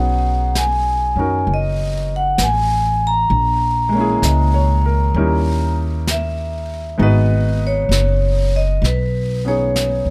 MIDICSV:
0, 0, Header, 1, 5, 480
1, 0, Start_track
1, 0, Key_signature, 5, "minor"
1, 0, Tempo, 919963
1, 1721, Time_signature, 4, 2, 24, 8
1, 5271, End_track
2, 0, Start_track
2, 0, Title_t, "Vibraphone"
2, 0, Program_c, 0, 11
2, 0, Note_on_c, 0, 78, 65
2, 301, Note_on_c, 0, 80, 70
2, 304, Note_off_c, 0, 78, 0
2, 785, Note_off_c, 0, 80, 0
2, 802, Note_on_c, 0, 75, 67
2, 1115, Note_off_c, 0, 75, 0
2, 1128, Note_on_c, 0, 78, 76
2, 1266, Note_off_c, 0, 78, 0
2, 1268, Note_on_c, 0, 80, 78
2, 1589, Note_off_c, 0, 80, 0
2, 1601, Note_on_c, 0, 82, 91
2, 3003, Note_off_c, 0, 82, 0
2, 3187, Note_on_c, 0, 76, 77
2, 3667, Note_on_c, 0, 75, 72
2, 3668, Note_off_c, 0, 76, 0
2, 3988, Note_off_c, 0, 75, 0
2, 4000, Note_on_c, 0, 73, 80
2, 4468, Note_on_c, 0, 75, 78
2, 4477, Note_off_c, 0, 73, 0
2, 4616, Note_off_c, 0, 75, 0
2, 4624, Note_on_c, 0, 71, 66
2, 4946, Note_on_c, 0, 73, 75
2, 4947, Note_off_c, 0, 71, 0
2, 5271, Note_off_c, 0, 73, 0
2, 5271, End_track
3, 0, Start_track
3, 0, Title_t, "Grand piano"
3, 0, Program_c, 1, 0
3, 0, Control_c, 1, 64, 127
3, 0, Note_on_c, 1, 54, 48
3, 0, Note_on_c, 1, 59, 47
3, 0, Note_on_c, 1, 61, 42
3, 0, Note_on_c, 1, 63, 46
3, 0, Note_on_c, 1, 68, 56
3, 601, Note_off_c, 1, 61, 0
3, 609, Note_on_c, 1, 61, 40
3, 612, Note_off_c, 1, 63, 0
3, 620, Note_on_c, 1, 63, 36
3, 621, Note_on_c, 1, 66, 38
3, 626, Note_on_c, 1, 70, 48
3, 1720, Note_off_c, 1, 59, 0
3, 1722, Note_off_c, 1, 54, 0
3, 1723, Note_off_c, 1, 61, 0
3, 1725, Note_off_c, 1, 68, 0
3, 1728, Note_off_c, 1, 63, 0
3, 1728, Control_c, 1, 64, 0
3, 1729, Note_off_c, 1, 66, 0
3, 1731, Note_off_c, 1, 70, 0
3, 1828, Control_c, 1, 64, 127
3, 2029, Note_on_c, 1, 56, 52
3, 2048, Note_on_c, 1, 58, 46
3, 2061, Note_on_c, 1, 61, 44
3, 2076, Note_on_c, 1, 64, 47
3, 2090, Note_on_c, 1, 68, 55
3, 2216, Note_on_c, 1, 75, 34
3, 2370, Note_on_c, 1, 73, 42
3, 2512, Note_off_c, 1, 75, 0
3, 2534, Note_on_c, 1, 70, 46
3, 2615, Note_off_c, 1, 73, 0
3, 2673, Note_off_c, 1, 56, 0
3, 2682, Note_off_c, 1, 58, 0
3, 2685, Note_off_c, 1, 61, 0
3, 2689, Control_c, 1, 64, 0
3, 2690, Note_off_c, 1, 70, 0
3, 2691, Note_off_c, 1, 64, 0
3, 2692, Note_on_c, 1, 61, 45
3, 2693, Note_on_c, 1, 55, 52
3, 2696, Note_on_c, 1, 63, 48
3, 2698, Note_on_c, 1, 64, 44
3, 2698, Note_on_c, 1, 70, 57
3, 2703, Note_off_c, 1, 68, 0
3, 2771, Control_c, 1, 64, 127
3, 3640, Note_off_c, 1, 63, 0
3, 3640, Note_on_c, 1, 56, 58
3, 3644, Note_on_c, 1, 59, 50
3, 3647, Note_off_c, 1, 55, 0
3, 3647, Note_off_c, 1, 61, 0
3, 3648, Note_on_c, 1, 63, 52
3, 3649, Control_c, 1, 64, 0
3, 3650, Note_off_c, 1, 64, 0
3, 3650, Note_off_c, 1, 70, 0
3, 3658, Note_on_c, 1, 66, 52
3, 3666, Note_on_c, 1, 71, 65
3, 3735, Control_c, 1, 64, 127
3, 4922, Note_off_c, 1, 59, 0
3, 4930, Note_on_c, 1, 59, 37
3, 4935, Note_off_c, 1, 63, 0
3, 4935, Note_on_c, 1, 61, 36
3, 4943, Note_on_c, 1, 63, 34
3, 4944, Note_on_c, 1, 68, 43
3, 5271, Note_off_c, 1, 56, 0
3, 5271, Note_off_c, 1, 59, 0
3, 5271, Note_off_c, 1, 61, 0
3, 5271, Note_off_c, 1, 63, 0
3, 5271, Note_off_c, 1, 66, 0
3, 5271, Note_off_c, 1, 68, 0
3, 5271, Note_off_c, 1, 71, 0
3, 5271, End_track
4, 0, Start_track
4, 0, Title_t, "Upright bass"
4, 0, Program_c, 2, 32
4, 0, Note_on_c, 2, 35, 80
4, 590, Note_off_c, 2, 35, 0
4, 604, Note_on_c, 2, 42, 53
4, 749, Note_off_c, 2, 42, 0
4, 766, Note_on_c, 2, 30, 62
4, 1223, Note_off_c, 2, 30, 0
4, 1243, Note_on_c, 2, 33, 69
4, 1701, Note_off_c, 2, 33, 0
4, 1722, Note_on_c, 2, 34, 73
4, 2181, Note_off_c, 2, 34, 0
4, 2203, Note_on_c, 2, 37, 68
4, 2661, Note_off_c, 2, 37, 0
4, 2684, Note_on_c, 2, 39, 70
4, 3622, Note_off_c, 2, 39, 0
4, 3649, Note_on_c, 2, 32, 75
4, 4104, Note_off_c, 2, 32, 0
4, 4117, Note_on_c, 2, 30, 63
4, 4578, Note_off_c, 2, 30, 0
4, 4600, Note_on_c, 2, 35, 75
4, 5220, Note_off_c, 2, 35, 0
4, 5244, Note_on_c, 2, 39, 51
4, 5271, Note_off_c, 2, 39, 0
4, 5271, End_track
5, 0, Start_track
5, 0, Title_t, "Drums"
5, 288, Note_on_c, 9, 25, 29
5, 288, Note_on_c, 9, 38, 42
5, 288, Note_on_c, 9, 44, 45
5, 341, Note_off_c, 9, 38, 0
5, 341, Note_off_c, 9, 44, 0
5, 770, Note_off_c, 9, 25, 0
5, 770, Note_on_c, 9, 25, 32
5, 1243, Note_off_c, 9, 25, 0
5, 1243, Note_on_c, 9, 25, 39
5, 1243, Note_on_c, 9, 38, 46
5, 1243, Note_on_c, 9, 44, 47
5, 1295, Note_off_c, 9, 38, 0
5, 1295, Note_off_c, 9, 44, 0
5, 1729, Note_off_c, 9, 25, 0
5, 1729, Note_on_c, 9, 25, 33
5, 2207, Note_off_c, 9, 25, 0
5, 2207, Note_on_c, 9, 25, 31
5, 2207, Note_on_c, 9, 38, 42
5, 2207, Note_on_c, 9, 44, 56
5, 2259, Note_off_c, 9, 38, 0
5, 2259, Note_off_c, 9, 44, 0
5, 2691, Note_off_c, 9, 25, 0
5, 2691, Note_on_c, 9, 25, 40
5, 3169, Note_off_c, 9, 25, 0
5, 3169, Note_on_c, 9, 25, 31
5, 3169, Note_on_c, 9, 38, 45
5, 3169, Note_on_c, 9, 44, 46
5, 3222, Note_off_c, 9, 38, 0
5, 3222, Note_off_c, 9, 44, 0
5, 3648, Note_off_c, 9, 25, 0
5, 3648, Note_on_c, 9, 25, 30
5, 4129, Note_off_c, 9, 25, 0
5, 4129, Note_on_c, 9, 25, 38
5, 4129, Note_on_c, 9, 38, 39
5, 4129, Note_on_c, 9, 44, 44
5, 4181, Note_off_c, 9, 38, 0
5, 4181, Note_off_c, 9, 44, 0
5, 4612, Note_off_c, 9, 25, 0
5, 4612, Note_on_c, 9, 25, 31
5, 4612, Note_on_c, 9, 38, 26
5, 4664, Note_off_c, 9, 38, 0
5, 5091, Note_off_c, 9, 25, 0
5, 5091, Note_on_c, 9, 25, 36
5, 5091, Note_on_c, 9, 38, 44
5, 5091, Note_on_c, 9, 44, 51
5, 5143, Note_off_c, 9, 38, 0
5, 5143, Note_off_c, 9, 44, 0
5, 5271, Note_off_c, 9, 25, 0
5, 5271, End_track
0, 0, End_of_file